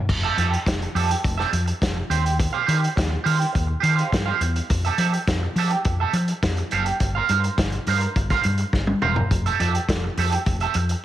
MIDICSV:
0, 0, Header, 1, 5, 480
1, 0, Start_track
1, 0, Key_signature, -1, "major"
1, 0, Tempo, 576369
1, 74, Time_signature, 4, 2, 24, 8
1, 9198, End_track
2, 0, Start_track
2, 0, Title_t, "Clean electric guitar"
2, 0, Program_c, 0, 27
2, 194, Note_on_c, 0, 76, 93
2, 201, Note_on_c, 0, 69, 75
2, 205, Note_on_c, 0, 67, 74
2, 303, Note_off_c, 0, 67, 0
2, 311, Note_off_c, 0, 69, 0
2, 313, Note_on_c, 0, 67, 67
2, 318, Note_off_c, 0, 76, 0
2, 321, Note_on_c, 0, 69, 74
2, 328, Note_on_c, 0, 76, 74
2, 419, Note_off_c, 0, 76, 0
2, 435, Note_off_c, 0, 69, 0
2, 452, Note_off_c, 0, 67, 0
2, 793, Note_on_c, 0, 67, 83
2, 803, Note_on_c, 0, 69, 91
2, 806, Note_on_c, 0, 76, 86
2, 913, Note_off_c, 0, 76, 0
2, 921, Note_off_c, 0, 69, 0
2, 970, Note_off_c, 0, 67, 0
2, 1145, Note_on_c, 0, 76, 97
2, 1158, Note_on_c, 0, 69, 86
2, 1164, Note_on_c, 0, 67, 80
2, 1255, Note_off_c, 0, 67, 0
2, 1261, Note_off_c, 0, 69, 0
2, 1268, Note_off_c, 0, 76, 0
2, 1749, Note_on_c, 0, 67, 89
2, 1755, Note_on_c, 0, 72, 81
2, 1762, Note_on_c, 0, 79, 78
2, 1865, Note_off_c, 0, 79, 0
2, 1872, Note_off_c, 0, 72, 0
2, 1929, Note_off_c, 0, 67, 0
2, 2104, Note_on_c, 0, 77, 93
2, 2113, Note_on_c, 0, 72, 75
2, 2117, Note_on_c, 0, 67, 84
2, 2209, Note_off_c, 0, 67, 0
2, 2219, Note_off_c, 0, 72, 0
2, 2219, Note_on_c, 0, 67, 85
2, 2222, Note_off_c, 0, 77, 0
2, 2229, Note_on_c, 0, 72, 76
2, 2232, Note_on_c, 0, 77, 72
2, 2323, Note_off_c, 0, 77, 0
2, 2336, Note_off_c, 0, 72, 0
2, 2365, Note_off_c, 0, 67, 0
2, 2697, Note_on_c, 0, 67, 94
2, 2710, Note_on_c, 0, 72, 94
2, 2715, Note_on_c, 0, 77, 95
2, 2810, Note_off_c, 0, 77, 0
2, 2822, Note_off_c, 0, 72, 0
2, 2883, Note_off_c, 0, 67, 0
2, 3168, Note_on_c, 0, 67, 84
2, 3182, Note_on_c, 0, 72, 97
2, 3187, Note_on_c, 0, 77, 88
2, 3285, Note_off_c, 0, 77, 0
2, 3292, Note_off_c, 0, 72, 0
2, 3295, Note_on_c, 0, 77, 66
2, 3298, Note_off_c, 0, 67, 0
2, 3302, Note_on_c, 0, 72, 58
2, 3308, Note_on_c, 0, 67, 53
2, 3419, Note_off_c, 0, 67, 0
2, 3424, Note_off_c, 0, 72, 0
2, 3426, Note_off_c, 0, 77, 0
2, 3544, Note_on_c, 0, 77, 81
2, 3551, Note_on_c, 0, 72, 78
2, 3561, Note_on_c, 0, 67, 77
2, 3671, Note_off_c, 0, 67, 0
2, 3679, Note_off_c, 0, 77, 0
2, 3680, Note_off_c, 0, 72, 0
2, 4036, Note_on_c, 0, 76, 76
2, 4047, Note_on_c, 0, 69, 83
2, 4054, Note_on_c, 0, 67, 70
2, 4143, Note_off_c, 0, 67, 0
2, 4152, Note_off_c, 0, 69, 0
2, 4153, Note_on_c, 0, 67, 69
2, 4157, Note_off_c, 0, 76, 0
2, 4162, Note_on_c, 0, 69, 74
2, 4167, Note_on_c, 0, 76, 85
2, 4264, Note_off_c, 0, 76, 0
2, 4273, Note_off_c, 0, 69, 0
2, 4292, Note_off_c, 0, 67, 0
2, 4648, Note_on_c, 0, 67, 86
2, 4651, Note_on_c, 0, 69, 100
2, 4657, Note_on_c, 0, 76, 104
2, 4747, Note_off_c, 0, 76, 0
2, 4762, Note_off_c, 0, 69, 0
2, 4818, Note_off_c, 0, 67, 0
2, 4998, Note_on_c, 0, 76, 79
2, 5005, Note_on_c, 0, 69, 93
2, 5012, Note_on_c, 0, 67, 71
2, 5113, Note_off_c, 0, 67, 0
2, 5118, Note_off_c, 0, 69, 0
2, 5126, Note_off_c, 0, 76, 0
2, 5597, Note_on_c, 0, 67, 84
2, 5601, Note_on_c, 0, 69, 102
2, 5613, Note_on_c, 0, 77, 106
2, 5715, Note_off_c, 0, 77, 0
2, 5716, Note_off_c, 0, 69, 0
2, 5772, Note_off_c, 0, 67, 0
2, 5954, Note_on_c, 0, 77, 100
2, 5966, Note_on_c, 0, 72, 80
2, 5976, Note_on_c, 0, 70, 81
2, 6069, Note_off_c, 0, 70, 0
2, 6077, Note_off_c, 0, 72, 0
2, 6079, Note_on_c, 0, 70, 64
2, 6087, Note_on_c, 0, 72, 71
2, 6088, Note_off_c, 0, 77, 0
2, 6098, Note_on_c, 0, 77, 68
2, 6194, Note_off_c, 0, 77, 0
2, 6203, Note_off_c, 0, 72, 0
2, 6215, Note_off_c, 0, 70, 0
2, 6562, Note_on_c, 0, 70, 85
2, 6572, Note_on_c, 0, 72, 88
2, 6581, Note_on_c, 0, 77, 94
2, 6667, Note_off_c, 0, 77, 0
2, 6678, Note_off_c, 0, 72, 0
2, 6734, Note_off_c, 0, 70, 0
2, 6917, Note_on_c, 0, 77, 88
2, 6923, Note_on_c, 0, 72, 91
2, 6930, Note_on_c, 0, 70, 75
2, 7026, Note_off_c, 0, 70, 0
2, 7035, Note_off_c, 0, 72, 0
2, 7038, Note_off_c, 0, 77, 0
2, 7511, Note_on_c, 0, 70, 91
2, 7513, Note_on_c, 0, 72, 90
2, 7518, Note_on_c, 0, 77, 86
2, 7624, Note_off_c, 0, 77, 0
2, 7629, Note_off_c, 0, 72, 0
2, 7688, Note_off_c, 0, 70, 0
2, 7877, Note_on_c, 0, 76, 83
2, 7884, Note_on_c, 0, 69, 87
2, 7891, Note_on_c, 0, 67, 73
2, 7985, Note_off_c, 0, 67, 0
2, 7994, Note_off_c, 0, 69, 0
2, 7995, Note_on_c, 0, 67, 65
2, 8000, Note_off_c, 0, 76, 0
2, 8004, Note_on_c, 0, 69, 72
2, 8010, Note_on_c, 0, 76, 78
2, 8112, Note_off_c, 0, 76, 0
2, 8121, Note_off_c, 0, 69, 0
2, 8132, Note_off_c, 0, 67, 0
2, 8483, Note_on_c, 0, 67, 81
2, 8489, Note_on_c, 0, 69, 93
2, 8497, Note_on_c, 0, 76, 90
2, 8599, Note_off_c, 0, 76, 0
2, 8608, Note_off_c, 0, 69, 0
2, 8654, Note_off_c, 0, 67, 0
2, 8837, Note_on_c, 0, 76, 98
2, 8848, Note_on_c, 0, 69, 85
2, 8855, Note_on_c, 0, 67, 69
2, 8953, Note_off_c, 0, 67, 0
2, 8960, Note_off_c, 0, 69, 0
2, 8962, Note_off_c, 0, 76, 0
2, 9198, End_track
3, 0, Start_track
3, 0, Title_t, "Fingered electric bass"
3, 0, Program_c, 1, 33
3, 74, Note_on_c, 1, 29, 113
3, 226, Note_off_c, 1, 29, 0
3, 311, Note_on_c, 1, 41, 106
3, 464, Note_off_c, 1, 41, 0
3, 555, Note_on_c, 1, 29, 101
3, 707, Note_off_c, 1, 29, 0
3, 791, Note_on_c, 1, 41, 111
3, 944, Note_off_c, 1, 41, 0
3, 1036, Note_on_c, 1, 29, 108
3, 1187, Note_off_c, 1, 29, 0
3, 1270, Note_on_c, 1, 41, 111
3, 1424, Note_off_c, 1, 41, 0
3, 1516, Note_on_c, 1, 29, 106
3, 1668, Note_off_c, 1, 29, 0
3, 1747, Note_on_c, 1, 39, 99
3, 2054, Note_off_c, 1, 39, 0
3, 2233, Note_on_c, 1, 51, 103
3, 2386, Note_off_c, 1, 51, 0
3, 2476, Note_on_c, 1, 39, 95
3, 2628, Note_off_c, 1, 39, 0
3, 2711, Note_on_c, 1, 51, 114
3, 2865, Note_off_c, 1, 51, 0
3, 2958, Note_on_c, 1, 39, 112
3, 3109, Note_off_c, 1, 39, 0
3, 3190, Note_on_c, 1, 51, 102
3, 3344, Note_off_c, 1, 51, 0
3, 3433, Note_on_c, 1, 43, 93
3, 3586, Note_off_c, 1, 43, 0
3, 3668, Note_on_c, 1, 40, 90
3, 3823, Note_off_c, 1, 40, 0
3, 3919, Note_on_c, 1, 41, 118
3, 4070, Note_off_c, 1, 41, 0
3, 4146, Note_on_c, 1, 53, 95
3, 4301, Note_off_c, 1, 53, 0
3, 4392, Note_on_c, 1, 41, 104
3, 4545, Note_off_c, 1, 41, 0
3, 4626, Note_on_c, 1, 53, 111
3, 4781, Note_off_c, 1, 53, 0
3, 4874, Note_on_c, 1, 41, 90
3, 5027, Note_off_c, 1, 41, 0
3, 5106, Note_on_c, 1, 53, 114
3, 5261, Note_off_c, 1, 53, 0
3, 5350, Note_on_c, 1, 41, 101
3, 5504, Note_off_c, 1, 41, 0
3, 5598, Note_on_c, 1, 30, 87
3, 5749, Note_off_c, 1, 30, 0
3, 5832, Note_on_c, 1, 31, 106
3, 5985, Note_off_c, 1, 31, 0
3, 6074, Note_on_c, 1, 43, 99
3, 6226, Note_off_c, 1, 43, 0
3, 6312, Note_on_c, 1, 31, 112
3, 6465, Note_off_c, 1, 31, 0
3, 6555, Note_on_c, 1, 43, 106
3, 6707, Note_off_c, 1, 43, 0
3, 6794, Note_on_c, 1, 31, 96
3, 6946, Note_off_c, 1, 31, 0
3, 7035, Note_on_c, 1, 43, 110
3, 7187, Note_off_c, 1, 43, 0
3, 7270, Note_on_c, 1, 31, 103
3, 7423, Note_off_c, 1, 31, 0
3, 7517, Note_on_c, 1, 28, 88
3, 7668, Note_off_c, 1, 28, 0
3, 7753, Note_on_c, 1, 29, 119
3, 7905, Note_off_c, 1, 29, 0
3, 7992, Note_on_c, 1, 41, 105
3, 8144, Note_off_c, 1, 41, 0
3, 8235, Note_on_c, 1, 29, 98
3, 8386, Note_off_c, 1, 29, 0
3, 8473, Note_on_c, 1, 41, 120
3, 8624, Note_off_c, 1, 41, 0
3, 8713, Note_on_c, 1, 29, 110
3, 8864, Note_off_c, 1, 29, 0
3, 8952, Note_on_c, 1, 41, 114
3, 9103, Note_off_c, 1, 41, 0
3, 9198, End_track
4, 0, Start_track
4, 0, Title_t, "Muted clean electric guitar strokes"
4, 80, Note_on_c, 9, 29, 40
4, 163, Note_off_c, 9, 29, 0
4, 429, Note_on_c, 9, 29, 48
4, 512, Note_off_c, 9, 29, 0
4, 564, Note_on_c, 9, 29, 41
4, 648, Note_off_c, 9, 29, 0
4, 677, Note_on_c, 9, 29, 40
4, 761, Note_off_c, 9, 29, 0
4, 923, Note_on_c, 9, 29, 54
4, 1006, Note_off_c, 9, 29, 0
4, 1029, Note_on_c, 9, 29, 40
4, 1112, Note_off_c, 9, 29, 0
4, 1265, Note_on_c, 9, 29, 46
4, 1348, Note_off_c, 9, 29, 0
4, 1383, Note_on_c, 9, 29, 55
4, 1466, Note_off_c, 9, 29, 0
4, 1628, Note_on_c, 9, 29, 41
4, 1712, Note_off_c, 9, 29, 0
4, 1868, Note_on_c, 9, 29, 56
4, 1951, Note_off_c, 9, 29, 0
4, 1990, Note_on_c, 9, 29, 38
4, 2073, Note_off_c, 9, 29, 0
4, 2333, Note_on_c, 9, 29, 45
4, 2416, Note_off_c, 9, 29, 0
4, 2464, Note_on_c, 9, 29, 45
4, 2547, Note_off_c, 9, 29, 0
4, 2584, Note_on_c, 9, 29, 60
4, 2667, Note_off_c, 9, 29, 0
4, 2820, Note_on_c, 9, 29, 45
4, 2904, Note_off_c, 9, 29, 0
4, 2934, Note_on_c, 9, 29, 46
4, 3017, Note_off_c, 9, 29, 0
4, 3058, Note_on_c, 9, 29, 41
4, 3141, Note_off_c, 9, 29, 0
4, 3429, Note_on_c, 9, 29, 40
4, 3512, Note_off_c, 9, 29, 0
4, 3681, Note_on_c, 9, 29, 47
4, 3765, Note_off_c, 9, 29, 0
4, 3798, Note_on_c, 9, 29, 47
4, 3881, Note_off_c, 9, 29, 0
4, 3911, Note_on_c, 9, 29, 49
4, 3994, Note_off_c, 9, 29, 0
4, 4274, Note_on_c, 9, 29, 41
4, 4357, Note_off_c, 9, 29, 0
4, 4403, Note_on_c, 9, 29, 43
4, 4486, Note_off_c, 9, 29, 0
4, 4522, Note_on_c, 9, 29, 45
4, 4605, Note_off_c, 9, 29, 0
4, 4757, Note_on_c, 9, 29, 47
4, 4840, Note_off_c, 9, 29, 0
4, 4880, Note_on_c, 9, 29, 51
4, 4963, Note_off_c, 9, 29, 0
4, 5123, Note_on_c, 9, 29, 49
4, 5207, Note_off_c, 9, 29, 0
4, 5253, Note_on_c, 9, 29, 40
4, 5336, Note_off_c, 9, 29, 0
4, 5482, Note_on_c, 9, 29, 44
4, 5566, Note_off_c, 9, 29, 0
4, 5718, Note_on_c, 9, 29, 52
4, 5802, Note_off_c, 9, 29, 0
4, 5843, Note_on_c, 9, 29, 46
4, 5927, Note_off_c, 9, 29, 0
4, 6204, Note_on_c, 9, 29, 40
4, 6287, Note_off_c, 9, 29, 0
4, 6323, Note_on_c, 9, 29, 41
4, 6406, Note_off_c, 9, 29, 0
4, 6444, Note_on_c, 9, 29, 45
4, 6527, Note_off_c, 9, 29, 0
4, 6677, Note_on_c, 9, 29, 43
4, 6760, Note_off_c, 9, 29, 0
4, 6794, Note_on_c, 9, 29, 34
4, 6877, Note_off_c, 9, 29, 0
4, 7036, Note_on_c, 9, 29, 39
4, 7120, Note_off_c, 9, 29, 0
4, 7157, Note_on_c, 9, 29, 50
4, 7240, Note_off_c, 9, 29, 0
4, 7276, Note_on_c, 9, 29, 36
4, 7359, Note_off_c, 9, 29, 0
4, 7392, Note_on_c, 9, 29, 45
4, 7475, Note_off_c, 9, 29, 0
4, 7634, Note_on_c, 9, 29, 58
4, 7717, Note_off_c, 9, 29, 0
4, 7754, Note_on_c, 9, 29, 41
4, 7837, Note_off_c, 9, 29, 0
4, 8122, Note_on_c, 9, 29, 44
4, 8205, Note_off_c, 9, 29, 0
4, 8246, Note_on_c, 9, 29, 37
4, 8329, Note_off_c, 9, 29, 0
4, 8361, Note_on_c, 9, 29, 61
4, 8445, Note_off_c, 9, 29, 0
4, 8609, Note_on_c, 9, 29, 49
4, 8693, Note_off_c, 9, 29, 0
4, 8718, Note_on_c, 9, 29, 43
4, 8802, Note_off_c, 9, 29, 0
4, 8963, Note_on_c, 9, 29, 47
4, 9047, Note_off_c, 9, 29, 0
4, 9087, Note_on_c, 9, 29, 58
4, 9170, Note_off_c, 9, 29, 0
4, 9198, End_track
5, 0, Start_track
5, 0, Title_t, "Drums"
5, 75, Note_on_c, 9, 36, 108
5, 78, Note_on_c, 9, 49, 105
5, 159, Note_off_c, 9, 36, 0
5, 161, Note_off_c, 9, 49, 0
5, 316, Note_on_c, 9, 42, 74
5, 399, Note_off_c, 9, 42, 0
5, 445, Note_on_c, 9, 42, 44
5, 528, Note_off_c, 9, 42, 0
5, 554, Note_on_c, 9, 36, 112
5, 560, Note_on_c, 9, 42, 88
5, 568, Note_on_c, 9, 38, 122
5, 637, Note_off_c, 9, 36, 0
5, 643, Note_off_c, 9, 42, 0
5, 652, Note_off_c, 9, 38, 0
5, 682, Note_on_c, 9, 42, 39
5, 765, Note_off_c, 9, 42, 0
5, 799, Note_on_c, 9, 46, 60
5, 882, Note_off_c, 9, 46, 0
5, 923, Note_on_c, 9, 42, 59
5, 1007, Note_off_c, 9, 42, 0
5, 1036, Note_on_c, 9, 36, 116
5, 1039, Note_on_c, 9, 42, 75
5, 1119, Note_off_c, 9, 36, 0
5, 1122, Note_off_c, 9, 42, 0
5, 1163, Note_on_c, 9, 38, 39
5, 1246, Note_off_c, 9, 38, 0
5, 1275, Note_on_c, 9, 42, 68
5, 1358, Note_off_c, 9, 42, 0
5, 1394, Note_on_c, 9, 42, 42
5, 1477, Note_off_c, 9, 42, 0
5, 1514, Note_on_c, 9, 36, 107
5, 1518, Note_on_c, 9, 42, 74
5, 1525, Note_on_c, 9, 38, 111
5, 1597, Note_off_c, 9, 36, 0
5, 1601, Note_off_c, 9, 42, 0
5, 1608, Note_off_c, 9, 38, 0
5, 1757, Note_on_c, 9, 42, 63
5, 1840, Note_off_c, 9, 42, 0
5, 1881, Note_on_c, 9, 42, 50
5, 1964, Note_off_c, 9, 42, 0
5, 1995, Note_on_c, 9, 36, 127
5, 1995, Note_on_c, 9, 42, 81
5, 2078, Note_off_c, 9, 36, 0
5, 2078, Note_off_c, 9, 42, 0
5, 2237, Note_on_c, 9, 42, 79
5, 2320, Note_off_c, 9, 42, 0
5, 2366, Note_on_c, 9, 42, 48
5, 2449, Note_off_c, 9, 42, 0
5, 2475, Note_on_c, 9, 36, 113
5, 2481, Note_on_c, 9, 42, 84
5, 2490, Note_on_c, 9, 38, 127
5, 2559, Note_off_c, 9, 36, 0
5, 2564, Note_off_c, 9, 42, 0
5, 2573, Note_off_c, 9, 38, 0
5, 2717, Note_on_c, 9, 46, 59
5, 2800, Note_off_c, 9, 46, 0
5, 2844, Note_on_c, 9, 42, 54
5, 2927, Note_off_c, 9, 42, 0
5, 2957, Note_on_c, 9, 42, 70
5, 2958, Note_on_c, 9, 36, 103
5, 3041, Note_off_c, 9, 36, 0
5, 3041, Note_off_c, 9, 42, 0
5, 3194, Note_on_c, 9, 42, 66
5, 3278, Note_off_c, 9, 42, 0
5, 3318, Note_on_c, 9, 42, 44
5, 3401, Note_off_c, 9, 42, 0
5, 3435, Note_on_c, 9, 36, 98
5, 3442, Note_on_c, 9, 42, 73
5, 3449, Note_on_c, 9, 38, 127
5, 3518, Note_off_c, 9, 36, 0
5, 3525, Note_off_c, 9, 42, 0
5, 3532, Note_off_c, 9, 38, 0
5, 3673, Note_on_c, 9, 42, 63
5, 3756, Note_off_c, 9, 42, 0
5, 3796, Note_on_c, 9, 42, 49
5, 3879, Note_off_c, 9, 42, 0
5, 3914, Note_on_c, 9, 42, 83
5, 3915, Note_on_c, 9, 36, 119
5, 3997, Note_off_c, 9, 42, 0
5, 3999, Note_off_c, 9, 36, 0
5, 4035, Note_on_c, 9, 42, 42
5, 4119, Note_off_c, 9, 42, 0
5, 4147, Note_on_c, 9, 42, 78
5, 4230, Note_off_c, 9, 42, 0
5, 4276, Note_on_c, 9, 42, 46
5, 4359, Note_off_c, 9, 42, 0
5, 4393, Note_on_c, 9, 36, 122
5, 4393, Note_on_c, 9, 42, 83
5, 4401, Note_on_c, 9, 38, 127
5, 4476, Note_off_c, 9, 36, 0
5, 4476, Note_off_c, 9, 42, 0
5, 4484, Note_off_c, 9, 38, 0
5, 4631, Note_on_c, 9, 46, 55
5, 4714, Note_off_c, 9, 46, 0
5, 4751, Note_on_c, 9, 42, 57
5, 4834, Note_off_c, 9, 42, 0
5, 4868, Note_on_c, 9, 42, 76
5, 4874, Note_on_c, 9, 36, 118
5, 4952, Note_off_c, 9, 42, 0
5, 4958, Note_off_c, 9, 36, 0
5, 5108, Note_on_c, 9, 42, 68
5, 5191, Note_off_c, 9, 42, 0
5, 5228, Note_on_c, 9, 42, 43
5, 5311, Note_off_c, 9, 42, 0
5, 5352, Note_on_c, 9, 36, 101
5, 5354, Note_on_c, 9, 42, 69
5, 5360, Note_on_c, 9, 38, 111
5, 5436, Note_off_c, 9, 36, 0
5, 5437, Note_off_c, 9, 42, 0
5, 5443, Note_off_c, 9, 38, 0
5, 5469, Note_on_c, 9, 42, 39
5, 5553, Note_off_c, 9, 42, 0
5, 5587, Note_on_c, 9, 42, 55
5, 5671, Note_off_c, 9, 42, 0
5, 5710, Note_on_c, 9, 42, 51
5, 5794, Note_off_c, 9, 42, 0
5, 5830, Note_on_c, 9, 42, 80
5, 5833, Note_on_c, 9, 36, 108
5, 5913, Note_off_c, 9, 42, 0
5, 5916, Note_off_c, 9, 36, 0
5, 6070, Note_on_c, 9, 42, 78
5, 6153, Note_off_c, 9, 42, 0
5, 6194, Note_on_c, 9, 42, 45
5, 6278, Note_off_c, 9, 42, 0
5, 6312, Note_on_c, 9, 36, 120
5, 6314, Note_on_c, 9, 42, 82
5, 6322, Note_on_c, 9, 38, 122
5, 6395, Note_off_c, 9, 36, 0
5, 6397, Note_off_c, 9, 42, 0
5, 6405, Note_off_c, 9, 38, 0
5, 6429, Note_on_c, 9, 42, 35
5, 6513, Note_off_c, 9, 42, 0
5, 6551, Note_on_c, 9, 46, 65
5, 6634, Note_off_c, 9, 46, 0
5, 6672, Note_on_c, 9, 42, 56
5, 6755, Note_off_c, 9, 42, 0
5, 6794, Note_on_c, 9, 42, 68
5, 6795, Note_on_c, 9, 36, 111
5, 6877, Note_off_c, 9, 42, 0
5, 6878, Note_off_c, 9, 36, 0
5, 6912, Note_on_c, 9, 42, 37
5, 6915, Note_on_c, 9, 36, 97
5, 6917, Note_on_c, 9, 38, 39
5, 6995, Note_off_c, 9, 42, 0
5, 6998, Note_off_c, 9, 36, 0
5, 7000, Note_off_c, 9, 38, 0
5, 7025, Note_on_c, 9, 42, 64
5, 7108, Note_off_c, 9, 42, 0
5, 7142, Note_on_c, 9, 42, 44
5, 7225, Note_off_c, 9, 42, 0
5, 7270, Note_on_c, 9, 36, 99
5, 7276, Note_on_c, 9, 38, 57
5, 7354, Note_off_c, 9, 36, 0
5, 7359, Note_off_c, 9, 38, 0
5, 7389, Note_on_c, 9, 48, 77
5, 7472, Note_off_c, 9, 48, 0
5, 7511, Note_on_c, 9, 45, 87
5, 7594, Note_off_c, 9, 45, 0
5, 7628, Note_on_c, 9, 43, 104
5, 7711, Note_off_c, 9, 43, 0
5, 7753, Note_on_c, 9, 36, 112
5, 7753, Note_on_c, 9, 42, 80
5, 7836, Note_off_c, 9, 36, 0
5, 7837, Note_off_c, 9, 42, 0
5, 7878, Note_on_c, 9, 42, 38
5, 7961, Note_off_c, 9, 42, 0
5, 7995, Note_on_c, 9, 42, 74
5, 8079, Note_off_c, 9, 42, 0
5, 8117, Note_on_c, 9, 42, 49
5, 8201, Note_off_c, 9, 42, 0
5, 8233, Note_on_c, 9, 36, 104
5, 8236, Note_on_c, 9, 42, 82
5, 8244, Note_on_c, 9, 38, 127
5, 8316, Note_off_c, 9, 36, 0
5, 8319, Note_off_c, 9, 42, 0
5, 8328, Note_off_c, 9, 38, 0
5, 8473, Note_on_c, 9, 46, 59
5, 8557, Note_off_c, 9, 46, 0
5, 8597, Note_on_c, 9, 42, 59
5, 8680, Note_off_c, 9, 42, 0
5, 8713, Note_on_c, 9, 42, 68
5, 8715, Note_on_c, 9, 36, 108
5, 8796, Note_off_c, 9, 42, 0
5, 8798, Note_off_c, 9, 36, 0
5, 8830, Note_on_c, 9, 42, 36
5, 8913, Note_off_c, 9, 42, 0
5, 8943, Note_on_c, 9, 42, 68
5, 9027, Note_off_c, 9, 42, 0
5, 9070, Note_on_c, 9, 42, 47
5, 9153, Note_off_c, 9, 42, 0
5, 9198, End_track
0, 0, End_of_file